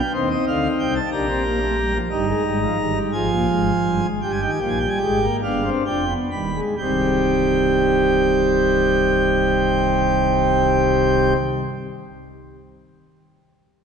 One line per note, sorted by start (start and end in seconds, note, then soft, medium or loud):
0.00 0.12 G5 medium
0.14 0.34 D#2 medium
0.14 0.34 D#3 medium
0.14 0.98 C4 medium
0.14 0.98 D#4 medium
0.14 0.28 C5 loud
0.31 0.45 D#5 medium
0.47 0.68 D2 medium
0.47 0.67 D3 medium
0.47 0.68 F5 loud
0.79 1.00 C2 medium
0.79 1.00 C3 medium
0.79 0.94 G5 loud
0.95 1.10 A5 loud
1.12 1.98 A#1 medium
1.12 1.98 A#2 medium
1.12 1.26 D4 medium
1.12 1.98 G4 medium
1.12 1.98 A#5 loud
1.29 1.43 C4 medium
1.45 1.59 A#3 medium
1.61 1.76 A3 medium
1.77 1.92 G3 medium
1.94 2.09 F3 medium
2.10 2.32 G1 loud
2.10 2.32 G2 loud
2.10 2.26 G3 medium
2.10 2.99 D#4 medium
2.10 2.99 A#5 medium
2.27 2.42 G#3 medium
2.44 2.66 G#1 medium
2.44 2.65 G#2 medium
2.44 2.59 G3 medium
2.62 2.77 F3 medium
2.78 3.00 G1 loud
2.78 3.00 G2 loud
2.78 2.94 D#3 medium
2.95 3.11 G3 medium
3.12 3.28 G#1 loud
3.12 3.28 G#2 loud
3.12 4.07 F3 medium
3.12 4.07 F4 medium
3.12 4.07 G#5 medium
3.30 3.46 A#1 medium
3.30 3.46 A#2 loud
3.48 3.71 G#1 loud
3.48 3.71 G#2 loud
3.84 4.00 G1 loud
3.84 4.00 G2 medium
4.03 4.19 G#1 loud
4.03 4.19 G#2 medium
4.22 4.46 G1 medium
4.22 4.46 G2 medium
4.22 4.38 G3 medium
4.22 5.25 G4 medium
4.22 4.31 G5 medium
4.31 4.41 G#5 medium
4.41 4.58 D#3 medium
4.41 4.50 G5 medium
4.50 4.59 G#5 medium
4.59 4.86 A#1 medium
4.59 4.86 A#2 medium
4.59 4.78 F3 medium
4.59 4.69 G5 medium
4.69 4.79 G#5 medium
4.79 4.99 G3 medium
4.79 4.88 G5 medium
4.89 4.98 G#5 medium
4.98 5.27 G#1 loud
4.98 5.27 G#2 loud
4.98 5.19 G#3 medium
4.98 5.36 G5 medium
5.23 5.40 A#3 medium
5.43 5.69 G1 medium
5.43 5.70 G2 medium
5.43 5.61 B3 medium
5.43 5.84 D4 medium
5.43 5.69 F5 medium
5.64 5.83 C4 medium
5.86 6.14 F1 medium
5.86 6.14 F2 medium
5.86 6.05 D4 loud
5.86 6.13 G5 loud
6.08 6.28 B3 medium
6.31 6.60 D#1 medium
6.31 6.60 D#2 medium
6.31 6.51 G3 medium
6.31 6.60 B5 medium
6.55 6.75 G#3 medium
6.78 11.33 C1 medium
6.78 11.33 C2 medium
6.78 11.36 D#3 medium
6.78 11.33 G3 medium
6.78 11.36 C4 medium
6.78 11.33 G4 medium
6.78 11.33 G5 medium